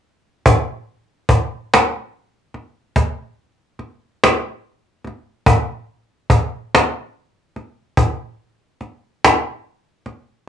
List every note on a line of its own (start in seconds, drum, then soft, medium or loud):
0.46 cajon bass medium
1.29 cajon bass medium
1.74 cajon slap medium
2.54 cajon slap soft
2.96 cajon bass medium
2.96 cajon slap soft
3.79 cajon slap soft
4.24 cajon slap medium
5.04 cajon slap soft
5.07 cajon slap soft
5.46 cajon bass medium
6.30 cajon bass medium
6.75 cajon slap medium
7.56 cajon slap soft
7.97 cajon bass medium
8.81 cajon slap soft
9.24 cajon slap medium
10.06 cajon slap soft